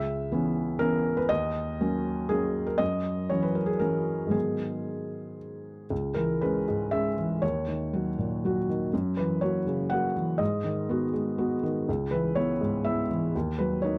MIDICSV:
0, 0, Header, 1, 2, 480
1, 0, Start_track
1, 0, Tempo, 500000
1, 1245, Time_signature, 3, 2, 24, 8
1, 3171, Tempo, 520833
1, 5571, Tempo, 504626
1, 7011, Tempo, 493827
1, 13387, End_track
2, 0, Start_track
2, 0, Title_t, "Felt piano"
2, 0, Program_c, 0, 0
2, 0, Control_c, 0, 64, 127
2, 0, Note_on_c, 0, 37, 46
2, 0, Note_on_c, 0, 76, 82
2, 282, Note_off_c, 0, 37, 0
2, 305, Note_on_c, 0, 52, 42
2, 307, Note_on_c, 0, 59, 40
2, 319, Note_on_c, 0, 61, 41
2, 738, Note_off_c, 0, 52, 0
2, 739, Note_off_c, 0, 59, 0
2, 745, Note_off_c, 0, 61, 0
2, 760, Note_on_c, 0, 70, 86
2, 766, Note_off_c, 0, 76, 0
2, 770, Note_on_c, 0, 59, 40
2, 772, Note_on_c, 0, 52, 39
2, 778, Note_on_c, 0, 61, 42
2, 1121, Note_off_c, 0, 70, 0
2, 1122, Note_on_c, 0, 71, 60
2, 1207, Note_off_c, 0, 59, 0
2, 1209, Note_off_c, 0, 52, 0
2, 1211, Note_off_c, 0, 61, 0
2, 1237, Note_on_c, 0, 75, 91
2, 1243, Note_off_c, 0, 71, 0
2, 1251, Note_on_c, 0, 39, 54
2, 1264, Control_c, 0, 64, 0
2, 1426, Control_c, 0, 64, 127
2, 1716, Note_off_c, 0, 39, 0
2, 1735, Note_on_c, 0, 54, 40
2, 1737, Note_on_c, 0, 58, 38
2, 1737, Note_on_c, 0, 61, 46
2, 2175, Note_off_c, 0, 54, 0
2, 2176, Note_off_c, 0, 58, 0
2, 2176, Note_off_c, 0, 61, 0
2, 2198, Note_on_c, 0, 68, 79
2, 2206, Note_off_c, 0, 75, 0
2, 2207, Note_on_c, 0, 58, 40
2, 2211, Note_on_c, 0, 54, 40
2, 2218, Note_on_c, 0, 61, 41
2, 2559, Note_on_c, 0, 70, 60
2, 2563, Note_off_c, 0, 68, 0
2, 2649, Note_off_c, 0, 58, 0
2, 2651, Note_off_c, 0, 54, 0
2, 2654, Note_off_c, 0, 61, 0
2, 2666, Note_on_c, 0, 75, 87
2, 2678, Note_on_c, 0, 42, 50
2, 2684, Note_off_c, 0, 70, 0
2, 2707, Control_c, 0, 64, 0
2, 2857, Control_c, 0, 64, 127
2, 3151, Note_off_c, 0, 42, 0
2, 3160, Note_off_c, 0, 75, 0
2, 3164, Note_on_c, 0, 73, 64
2, 3175, Note_on_c, 0, 54, 33
2, 3179, Note_on_c, 0, 52, 35
2, 3181, Note_on_c, 0, 61, 36
2, 3283, Note_on_c, 0, 71, 54
2, 3285, Note_off_c, 0, 73, 0
2, 3400, Note_on_c, 0, 70, 50
2, 3403, Note_off_c, 0, 71, 0
2, 3501, Note_on_c, 0, 68, 51
2, 3521, Note_off_c, 0, 70, 0
2, 3608, Note_off_c, 0, 54, 0
2, 3610, Note_off_c, 0, 52, 0
2, 3611, Note_off_c, 0, 61, 0
2, 3623, Note_on_c, 0, 70, 60
2, 3632, Note_off_c, 0, 68, 0
2, 3633, Note_on_c, 0, 52, 32
2, 3636, Note_on_c, 0, 54, 33
2, 3643, Note_on_c, 0, 61, 35
2, 4060, Note_on_c, 0, 44, 35
2, 4075, Note_off_c, 0, 54, 0
2, 4080, Note_on_c, 0, 51, 28
2, 4084, Note_off_c, 0, 52, 0
2, 4089, Note_off_c, 0, 61, 0
2, 4089, Note_on_c, 0, 54, 27
2, 4095, Note_on_c, 0, 59, 28
2, 4100, Note_on_c, 0, 68, 54
2, 4116, Note_off_c, 0, 70, 0
2, 4146, Control_c, 0, 64, 0
2, 4319, Control_c, 0, 64, 127
2, 5079, Note_off_c, 0, 68, 0
2, 5502, Note_off_c, 0, 44, 0
2, 5512, Note_off_c, 0, 51, 0
2, 5516, Note_off_c, 0, 54, 0
2, 5520, Note_off_c, 0, 59, 0
2, 5568, Note_on_c, 0, 37, 42
2, 5592, Control_c, 0, 64, 0
2, 5771, Control_c, 0, 64, 127
2, 5796, Note_on_c, 0, 70, 63
2, 5813, Note_on_c, 0, 52, 39
2, 6046, Note_off_c, 0, 70, 0
2, 6053, Note_on_c, 0, 71, 59
2, 6061, Note_on_c, 0, 56, 36
2, 6069, Note_on_c, 0, 61, 37
2, 6198, Note_off_c, 0, 52, 0
2, 6274, Note_off_c, 0, 56, 0
2, 6278, Note_off_c, 0, 61, 0
2, 6309, Note_on_c, 0, 44, 38
2, 6527, Note_on_c, 0, 76, 72
2, 6533, Note_off_c, 0, 71, 0
2, 6534, Note_on_c, 0, 56, 37
2, 6540, Note_on_c, 0, 61, 37
2, 6685, Note_off_c, 0, 44, 0
2, 6749, Note_off_c, 0, 56, 0
2, 6752, Note_off_c, 0, 61, 0
2, 6778, Note_on_c, 0, 52, 35
2, 6972, Note_off_c, 0, 37, 0
2, 7008, Note_off_c, 0, 76, 0
2, 7008, Note_on_c, 0, 73, 69
2, 7014, Note_off_c, 0, 52, 0
2, 7017, Note_on_c, 0, 39, 46
2, 7033, Control_c, 0, 64, 0
2, 7214, Control_c, 0, 64, 127
2, 7261, Note_on_c, 0, 51, 36
2, 7509, Note_on_c, 0, 54, 33
2, 7512, Note_on_c, 0, 66, 37
2, 7647, Note_off_c, 0, 51, 0
2, 7724, Note_off_c, 0, 54, 0
2, 7726, Note_off_c, 0, 66, 0
2, 7751, Note_on_c, 0, 46, 33
2, 8007, Note_on_c, 0, 54, 34
2, 8017, Note_on_c, 0, 66, 38
2, 8137, Note_off_c, 0, 46, 0
2, 8217, Note_off_c, 0, 54, 0
2, 8222, Note_off_c, 0, 66, 0
2, 8227, Note_off_c, 0, 73, 0
2, 8248, Note_on_c, 0, 51, 35
2, 8434, Note_off_c, 0, 39, 0
2, 8480, Note_off_c, 0, 51, 0
2, 8482, Note_on_c, 0, 42, 46
2, 8486, Control_c, 0, 64, 0
2, 8668, Control_c, 0, 64, 127
2, 8712, Note_on_c, 0, 71, 59
2, 8732, Note_on_c, 0, 52, 33
2, 8946, Note_on_c, 0, 73, 60
2, 8952, Note_off_c, 0, 71, 0
2, 8959, Note_on_c, 0, 58, 33
2, 8962, Note_on_c, 0, 66, 38
2, 9108, Note_off_c, 0, 52, 0
2, 9174, Note_off_c, 0, 58, 0
2, 9176, Note_off_c, 0, 66, 0
2, 9194, Note_on_c, 0, 49, 36
2, 9417, Note_on_c, 0, 78, 73
2, 9431, Note_off_c, 0, 73, 0
2, 9431, Note_on_c, 0, 58, 33
2, 9441, Note_on_c, 0, 66, 40
2, 9576, Note_off_c, 0, 49, 0
2, 9645, Note_off_c, 0, 58, 0
2, 9651, Note_off_c, 0, 66, 0
2, 9677, Note_on_c, 0, 52, 36
2, 9874, Note_off_c, 0, 42, 0
2, 9887, Note_on_c, 0, 75, 68
2, 9898, Note_off_c, 0, 78, 0
2, 9899, Note_on_c, 0, 44, 48
2, 9910, Note_off_c, 0, 52, 0
2, 9925, Control_c, 0, 64, 0
2, 10087, Control_c, 0, 64, 127
2, 10142, Note_on_c, 0, 51, 41
2, 10385, Note_on_c, 0, 59, 36
2, 10398, Note_on_c, 0, 66, 41
2, 10526, Note_off_c, 0, 51, 0
2, 10600, Note_off_c, 0, 59, 0
2, 10607, Note_off_c, 0, 66, 0
2, 10620, Note_on_c, 0, 56, 38
2, 10861, Note_on_c, 0, 59, 36
2, 10863, Note_on_c, 0, 66, 38
2, 11007, Note_off_c, 0, 56, 0
2, 11079, Note_off_c, 0, 59, 0
2, 11080, Note_off_c, 0, 66, 0
2, 11094, Note_off_c, 0, 75, 0
2, 11104, Note_on_c, 0, 51, 41
2, 11300, Note_off_c, 0, 44, 0
2, 11343, Note_off_c, 0, 51, 0
2, 11352, Note_on_c, 0, 37, 47
2, 11359, Control_c, 0, 64, 0
2, 11503, Control_c, 0, 64, 127
2, 11569, Note_on_c, 0, 71, 69
2, 11583, Note_on_c, 0, 52, 39
2, 11805, Note_on_c, 0, 73, 68
2, 11813, Note_off_c, 0, 71, 0
2, 11815, Note_on_c, 0, 64, 44
2, 11818, Note_on_c, 0, 59, 39
2, 11964, Note_off_c, 0, 52, 0
2, 12032, Note_off_c, 0, 64, 0
2, 12034, Note_off_c, 0, 59, 0
2, 12053, Note_on_c, 0, 44, 39
2, 12283, Note_on_c, 0, 76, 72
2, 12290, Note_off_c, 0, 73, 0
2, 12292, Note_on_c, 0, 59, 36
2, 12296, Note_on_c, 0, 64, 39
2, 12436, Note_off_c, 0, 44, 0
2, 12507, Note_off_c, 0, 59, 0
2, 12508, Note_off_c, 0, 64, 0
2, 12538, Note_on_c, 0, 52, 38
2, 12734, Note_off_c, 0, 37, 0
2, 12761, Note_off_c, 0, 76, 0
2, 12771, Note_off_c, 0, 52, 0
2, 12779, Note_on_c, 0, 39, 46
2, 12783, Control_c, 0, 64, 0
2, 12913, Control_c, 0, 64, 127
2, 13003, Note_on_c, 0, 71, 66
2, 13017, Note_on_c, 0, 54, 37
2, 13229, Note_on_c, 0, 73, 61
2, 13243, Note_on_c, 0, 58, 39
2, 13247, Note_off_c, 0, 71, 0
2, 13254, Note_on_c, 0, 63, 39
2, 13387, Note_off_c, 0, 39, 0
2, 13387, Note_off_c, 0, 54, 0
2, 13387, Note_off_c, 0, 58, 0
2, 13387, Note_off_c, 0, 63, 0
2, 13387, Note_off_c, 0, 73, 0
2, 13387, End_track
0, 0, End_of_file